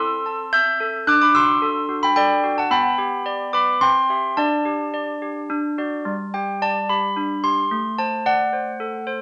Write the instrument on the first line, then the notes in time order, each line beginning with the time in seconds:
handbells
Already playing: C4 E4 C6 E6
0.00 A4
0.26 A5
0.53 E5 E6 G6
0.80 A4
1.07 D4 D6 F#6
1.21 B5 D6
1.35 F#4 C6 E6
1.62 A4
1.89 F#4
2.03 G5 B5
2.16 A4 D5 G5
2.44 F#4
2.58 F#5 A5
2.71 B3 G5 B5
2.98 G4
3.26 D5
3.53 B4 B5 D6
3.81 C4 G5 C6
4.10 G4 E5
4.37 D4 D5 A5
4.65 G4
4.94 D5
5.22 G4
5.50 D4
5.78 F#4 D5
6.05 G3
6.34 G4 G5
6.62 D5 A5
6.89 G4 B5
7.16 D4
7.44 G4 C6
7.71 A3
7.98 C5 A5
8.26 D5 F#5
8.53 C5
8.80 A4
9.07 C5